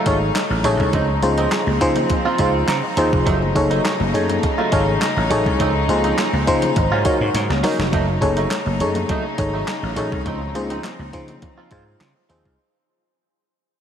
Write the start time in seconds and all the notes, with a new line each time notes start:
Already playing: C#3 F#3 A3 D#4
0.06 G#1 F#3 A3 D#4 F4 G#4 A4 C#5, kick, closed hi-hat
0.21 muted clean electric guitar stroke
0.35 snare, clap, closed hi-hat
0.50 A1, muted clean electric guitar stroke
0.64 A1 F#3 A3 D#4 G#4 A4 C#5, closed hi-hat
0.80 C2, muted clean electric guitar stroke, kick
0.93 C#2 F3 C4 D#4, kick, closed hi-hat, muted conga, low conga
1.08 muted clean electric guitar stroke
1.22 C#2 D#4 F4 G#4 C5, muted clean electric guitar stroke, closed hi-hat, high conga
1.38 F3 C4 D#4, closed hi-hat
1.52 muted clean electric guitar stroke, snare, clap, closed hi-hat
1.67 C#2, muted clean electric guitar stroke, high conga
1.81 C#3 D#4 F4 G#4 C5, kick, closed hi-hat
1.96 muted clean electric guitar stroke, closed hi-hat, high conga, low conga
2.10 muted clean electric guitar stroke, kick, closed hi-hat
2.25 F3 C4 F4, muted conga
2.38 C#2 F3 C4 D#4 F4 G#4 C5, kick, closed hi-hat
2.56 muted clean electric guitar stroke
2.68 C#3 A#5, snare, clap, closed hi-hat
2.84 muted clean electric guitar stroke
2.97 D#2 F3 C4 D#4 F4 G#4 C5, closed hi-hat
3.13 F1, muted clean electric guitar stroke, kick
3.26 F#1 C#3 F#3 A3 D#4, kick, closed hi-hat, low conga
3.41 muted clean electric guitar stroke, muted conga
3.55 F#1 D#4 G#4 A4 C#5, muted clean electric guitar stroke, kick, closed hi-hat, high conga
3.70 F#3 A3 D#4, closed hi-hat
3.84 muted clean electric guitar stroke, snare, clap, closed hi-hat, muted conga
4.00 F#1, muted clean electric guitar stroke, muted conga, high conga
4.14 F#2 D#4 G#4 A4 C#5, closed hi-hat
4.29 muted clean electric guitar stroke, closed hi-hat, high conga, low conga
4.43 muted clean electric guitar stroke, kick, closed hi-hat, muted conga
4.58 F#3 A3 F4, muted conga
4.72 G#1 F#3 A3 D#4 F4 G#4 A4 C#5, kick, closed hi-hat
4.87 muted clean electric guitar stroke
5.01 snare, clap, closed hi-hat, muted conga
5.17 A1, muted clean electric guitar stroke, muted conga
5.30 A1 F#3 A3 D#4 G#4 A4 C#5, closed hi-hat
5.46 C2, muted clean electric guitar stroke, kick
5.59 C#2 F3 C4 D#4, kick, closed hi-hat, low conga
5.75 muted clean electric guitar stroke
5.88 C#2 D#4 F4 G#4 C5, muted clean electric guitar stroke, closed hi-hat, high conga
6.04 F3 C4 D#4, closed hi-hat
6.18 muted clean electric guitar stroke, snare, clap, closed hi-hat, muted conga
6.33 C#2, muted clean electric guitar stroke, muted conga, high conga
6.47 C#3 D#4 F4 G#4 C5, kick, closed hi-hat
6.62 muted clean electric guitar stroke, closed hi-hat, high conga, low conga
6.76 G#1 F#3 G#3, muted clean electric guitar stroke, kick, closed hi-hat, muted conga, low conga
6.91 G#2 F#3 C#4 F4
7.05 F#3 C#4 D#4 F4 F#4 A#4 C#5, kick, closed hi-hat
7.21 G#2, muted clean electric guitar stroke
7.34 G#2, snare, closed hi-hat, muted conga
7.50 C#2, muted clean electric guitar stroke, snare, muted conga, high conga
7.63 F#3 C#4 D#4 F#4 A#4 C#5, snare, open hi-hat
7.79 F1, muted clean electric guitar stroke, snare
7.92 F#1 C#3 F#3 A3 D#4, kick, closed hi-hat, muted conga, low conga
8.08 muted clean electric guitar stroke, muted conga
8.21 F#1 D#4 G#4 A4 C#5, muted clean electric guitar stroke, kick, closed hi-hat, high conga
8.37 F#3 A3 D#4, closed hi-hat
8.51 muted clean electric guitar stroke, snare, clap, closed hi-hat, muted conga
8.66 F#1, muted clean electric guitar stroke, muted conga, high conga
8.80 F#2 D#4 G#4 A4 C#5, closed hi-hat
8.95 muted clean electric guitar stroke, closed hi-hat, high conga, low conga
9.09 F#3 A3 D#4, kick, closed hi-hat, low conga
9.25 muted clean electric guitar stroke
9.38 G#1 D#4 G#4 A4 C#5, muted clean electric guitar stroke, kick, closed hi-hat
9.53 F#3 A3 D#4
9.68 snare, clap, closed hi-hat, muted conga
9.83 A1, muted clean electric guitar stroke
9.96 A1 F#3 A3 D#4 G#4 A4 C#5, closed hi-hat
10.12 C2, muted clean electric guitar stroke, kick
10.25 C#2 F3 C4 D#4, kick, closed hi-hat, low conga
10.42 muted clean electric guitar stroke
10.55 C#2 D#4 F4 G#4 C5, muted clean electric guitar stroke, closed hi-hat, high conga
10.70 F3 C4 D#4, closed hi-hat
10.84 muted clean electric guitar stroke, snare, clap, closed hi-hat, muted conga
10.99 C#2, muted clean electric guitar stroke, high conga
11.13 C#3 D#4 F4 G#4 C5, kick, closed hi-hat
11.28 muted clean electric guitar stroke, closed hi-hat, high conga, low conga
11.42 muted clean electric guitar stroke, kick, closed hi-hat, muted conga, low conga
11.58 F3 C4 F4
11.71 G#2 F3 C4 D#4 F4 G#4 C5, kick, closed hi-hat
11.87 muted clean electric guitar stroke
12.01 C#3, snare, clap, closed hi-hat, muted conga
12.16 muted clean electric guitar stroke
12.29 D#2 F3 C4 D#4 F4 G#4 C5, closed hi-hat
12.45 C2, kick